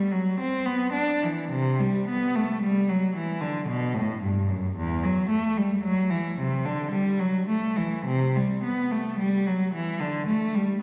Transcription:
0.00 0.11 G3 medium
0.11 0.38 F#3 medium
0.39 0.66 C4 medium
0.66 0.94 B3 medium
0.93 1.21 D4 medium
1.23 1.52 E3 medium
1.50 1.79 C3 medium
1.79 2.07 G3 medium
2.09 2.35 B3 medium
2.36 2.62 A3 medium
2.62 2.88 G3 medium
2.89 3.15 F#3 medium
3.15 3.41 E3 medium
3.41 3.67 D3 medium
3.68 3.94 B2 medium
3.95 4.21 A2 medium
4.21 4.47 G2 medium
4.48 4.74 F#2 medium
4.76 5.01 E2 medium
5.04 5.29 F#3 medium
5.29 5.55 A3 medium
5.57 5.82 G3 medium
5.83 6.09 F#3 medium
6.10 6.36 E3 medium
6.39 6.64 C3 medium
6.65 6.91 D3 medium
6.92 7.18 G3 medium
7.19 7.46 F#3 medium
7.48 7.75 A3 medium
7.77 8.04 E3 medium
8.05 8.32 C3 medium
8.36 8.62 G3 medium
8.63 8.89 B3 medium
8.92 9.18 A3 medium
9.19 9.45 G3 medium
9.47 9.73 F#3 medium
9.74 10.00 E3 medium
10.00 10.27 D3 medium
10.27 10.53 A3 medium
10.55 10.81 G3 medium

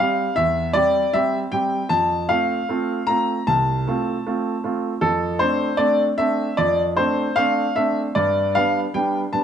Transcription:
0.00 0.27 G3 soft
0.00 0.27 C4 soft
0.00 0.27 G4 medium
0.00 0.33 F5 medium
0.36 0.74 E2 medium
0.36 0.71 E5 loud
0.73 1.03 G3 soft
0.73 1.03 C4 soft
0.73 1.03 G4 medium
0.73 1.13 D5 loud
1.13 1.42 G3 soft
1.13 1.43 C4 soft
1.13 1.43 G4 medium
1.13 1.37 E5 loud
1.52 1.81 G3 soft
1.52 1.81 C4 soft
1.52 1.81 G4 medium
1.52 1.91 G5 medium
1.89 2.28 F2 medium
1.89 2.25 A5 loud
2.29 2.58 A3 soft
2.29 2.58 C4 soft
2.29 2.58 F4 soft
2.29 3.08 F5 medium
2.69 2.98 A3 soft
2.69 2.98 C4 soft
2.69 2.98 F4 medium
3.07 3.37 A3 soft
3.07 3.37 C4 soft
3.07 3.37 F4 medium
3.07 3.47 A#5 medium
3.47 3.86 C2 medium
3.47 4.60 A5 medium
3.87 4.15 A3 medium
3.87 4.15 C4 soft
3.87 4.16 F4 medium
4.26 4.54 A3 medium
4.26 4.54 C4 soft
4.26 4.54 F4 medium
4.64 4.92 A3 soft
4.64 4.92 C4 soft
4.64 4.92 F4 medium
5.01 5.40 F2 medium
5.01 5.41 A4 medium
5.39 5.68 A3 soft
5.39 5.69 C4 soft
5.39 5.69 D4 medium
5.39 5.75 C5 medium
5.77 6.07 A3 medium
5.77 6.07 C4 soft
5.77 6.08 D4 medium
5.77 6.02 D5 medium
6.18 6.47 A3 soft
6.18 6.47 C4 soft
6.18 6.48 D4 medium
6.18 6.57 E5 medium
6.57 6.96 F2 medium
6.57 6.81 D5 medium
6.97 7.26 A3 medium
6.97 7.26 C4 soft
6.97 7.26 D4 medium
6.97 7.36 C5 medium
7.36 7.65 A3 soft
7.36 7.65 C4 medium
7.36 7.65 D4 medium
7.36 7.76 F5 loud
7.76 8.05 A3 soft
7.76 8.05 C4 soft
7.76 8.05 D4 soft
7.76 8.00 E5 medium
8.15 8.54 G2 medium
8.15 8.55 D5 medium
8.55 8.84 G3 soft
8.55 8.84 B3 soft
8.55 8.84 D4 medium
8.55 8.78 F5 medium
8.94 9.23 G3 soft
8.94 9.23 B3 soft
8.94 9.23 D4 soft
8.94 9.18 G5 medium
9.33 9.44 G3 soft
9.33 9.44 B3 soft
9.33 9.44 D4 soft
9.33 9.44 A5 medium

